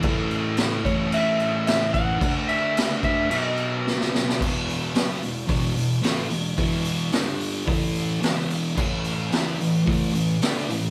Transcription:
<<
  \new Staff \with { instrumentName = "Electric slide guitar" } { \time 4/4 \key a \lydian \tempo 4 = 110 r4. cis''8 e''4 e''8 fis''8~ | fis''8 e''4 e''8 dis''4. r8 | r1 | r1 |
r1 | }
  \new Staff \with { instrumentName = "Distorted electric guitar" } { \clef bass \time 4/4 \key a \lydian <a, e a>4. <a, e a>2~ <a, e a>8 | <d a d'>4. <d a d'>8 <b, fis b>4. <b, fis b>8 | <e, b, e>4 <b, fis b>8 <e, b,>8 <e, b, e>8 <e, b,>8 <a, e a>8 <e, b,>8 | <e, b, e>4 <g, d g>4 <a, e a>4 <e, b, e>4 |
<a, e a>4 <e b e'>8 <a, e>8 <a, e a>8 <a, e>8 <d a d'>8 <a, e>8 | }
  \new DrumStaff \with { instrumentName = "Drums" } \drummode { \time 4/4 <cymc bd>8 cymc8 <cymc sn>8 <cymc bd>8 cymc8 cymc8 <cymc sn>8 <cymc bd>8 | <cymc bd>8 cymc8 <cymc sn>8 <cymc bd>8 cymc8 cymc8 sn16 sn16 sn16 sn16 | <cymc bd>8 hho8 <hho sn>8 hho8 <hho bd>8 hho8 <hho sn>8 hho8 | <hho bd>8 hho8 <hho sn>8 hho8 <hho bd>8 hho8 <hho sn>16 sn16 hho8 |
<cymc bd>8 hho8 <hho sn>8 hho8 <hho bd>8 hho8 <hho sn>16 sn16 hho8 | }
>>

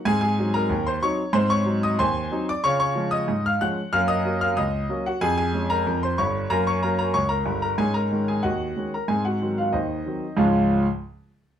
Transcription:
<<
  \new Staff \with { instrumentName = "Grand piano" } { \time 2/4 \key des \major \tempo 4 = 93 <aes' aes''>16 <aes' aes''>8 <bes' bes''>8 <c'' c'''>16 <des'' des'''>8 | <c'' c'''>16 <des'' des'''>8 <ees'' ees'''>16 <c'' aes'' c'''>8. <d'' d'''>16 | <des'' des'''>16 <des'' des'''>8 <ees'' ees'''>8 <f'' f'''>16 <ges'' ges'''>8 | <f'' f'''>16 <ees'' ees'''>8 <f'' f'''>16 <ees'' ees'''>8. <ges' ges''>16 |
<aes' aes''>16 <aes' aes''>8 <bes' bes''>8 <c'' c'''>16 <des'' des'''>8 | <bes' bes''>16 <des'' des'''>16 <bes' bes''>16 <bes' bes''>16 <des'' des'''>16 <bes' bes''>8 <bes' bes''>16 | <aes' aes''>16 <bes' bes''>8 <aes' aes''>16 <ges' ees'' ges''>8. <bes' bes''>16 | <aes' aes''>16 <ges' ges''>8 <f' f''>16 <ees' c'' ees''>4 |
<des, aes, f aes des' f' f''>8 r4. | }
  \new Staff \with { instrumentName = "Grand piano" } { \clef bass \time 2/4 \key des \major <aes, c'>8 <ges c' ees'>8 ees,8 <ges c' ees'>8 | <aes, c'>8 <ges c' ees'>8 ees,8 <ges c' ees'>8 | <des f'>8 <f aes des'>8 aes,8 <f aes des'>8 | <ges, bes>8 <ges bes des'>8 des,8 <ges bes des'>8 |
f,8 <aes des'>8 f,8 <g,, g,>8 | <ges, bes>8 <ges bes des'>8 des,8 <g,, g,>8 | <aes, des'>8 <ees aes des'>8 ees,8 <ees aes des'>8 | <aes, c'>8 <ees ges c'>8 ees,8 <ees ges c'>8 |
r2 | }
>>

